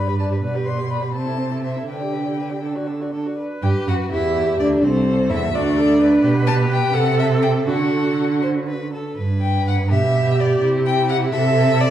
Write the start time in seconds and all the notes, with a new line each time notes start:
Already playing: G2 B5
0.07 G4 B4
0.17 B4 D5 A5
0.30 G4 B4
0.42 B2 B4 D5
0.54 G4 B4
0.65 B4 D5 C6
0.78 G4 B4
0.90 B4 D5 B5
1.02 G4 B4
1.13 C3 C4 C5 A5
1.26 E4 A4
1.38 C4 C5
1.51 E4 A4
1.63 C4 C5 E5
1.76 E4 A4
1.88 D3 D4 B4 G5
2.00 G4 D5
2.13 D4 B4
2.26 G4 D5
2.37 D4 B4
2.50 G4 D5
2.62 D4 A4
2.75 F#4 D5
2.87 D4 A4
3.01 F#4 D5
3.13 D4 A4
3.26 F#4 D5
3.39 B4
3.62 G2 G4 G5
3.87 F#2 F#4 F#5
4.11 E2 E4 G4 E5
4.59 D2 D4 D5
4.82 C2 C4 A4 C5
5.30 E2 E4 E5
5.54 D2 D4 F#4 D5
5.77 A4
6.01 B4
6.24 B2 G4
6.47 A5
6.71 G5
6.93 C3 A4 F#5
7.19 E5
7.42 G5
7.66 D3 F#4 A4 F#5
8.42 C5
8.68 B4
8.92 A4
9.16 G2 B4
9.41 G5
9.67 F#5
9.89 B2 G4 E5
10.40 D5
10.62 C3 E4
10.86 G5
11.09 F#5
11.32 C3 A4 E5
11.81 D5